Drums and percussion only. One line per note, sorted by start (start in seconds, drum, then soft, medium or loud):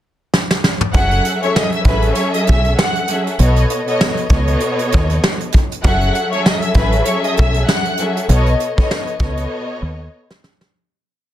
0.34 snare medium
0.51 snare medium
0.64 snare medium
0.81 mid tom loud
0.94 kick loud
0.94 closed hi-hat loud
1.11 closed hi-hat soft
1.25 closed hi-hat medium
1.43 closed hi-hat soft
1.56 snare loud
1.72 closed hi-hat soft
1.84 kick medium
1.84 closed hi-hat medium
2.02 closed hi-hat medium
2.15 closed hi-hat medium
2.34 closed hi-hat medium
2.47 kick loud
2.47 closed hi-hat medium
2.64 closed hi-hat medium
2.79 snare loud
2.95 closed hi-hat soft
3.08 closed hi-hat medium
3.27 closed hi-hat medium
3.39 closed hi-hat medium
3.56 closed hi-hat soft
3.70 closed hi-hat medium
3.88 closed hi-hat soft
4.01 snare loud
4.17 closed hi-hat soft
4.29 kick medium
4.29 closed hi-hat medium
4.47 closed hi-hat medium
4.60 closed hi-hat medium
4.79 closed hi-hat medium
4.92 kick loud
4.92 closed hi-hat medium
5.10 closed hi-hat medium
5.24 snare loud
5.40 closed hi-hat soft
5.52 kick medium
5.52 closed hi-hat medium
5.72 closed hi-hat medium
5.84 kick loud
5.84 closed hi-hat loud
6.01 closed hi-hat soft
6.15 closed hi-hat medium
6.32 closed hi-hat soft
6.46 snare loud
6.62 closed hi-hat soft
6.74 kick medium
6.74 closed hi-hat medium
6.92 closed hi-hat medium
7.05 closed hi-hat medium
7.24 closed hi-hat medium
7.37 kick loud
7.37 closed hi-hat medium
7.54 closed hi-hat medium
7.68 snare loud
7.85 closed hi-hat soft
7.97 closed hi-hat medium
8.17 closed hi-hat medium
8.29 closed hi-hat loud
8.46 closed hi-hat soft
8.60 closed hi-hat medium
8.78 kick medium
8.78 closed hi-hat soft
8.91 snare loud
9.07 closed hi-hat soft
9.19 kick medium
9.19 closed hi-hat medium
9.37 closed hi-hat medium
10.30 snare medium
10.44 snare loud
10.61 snare medium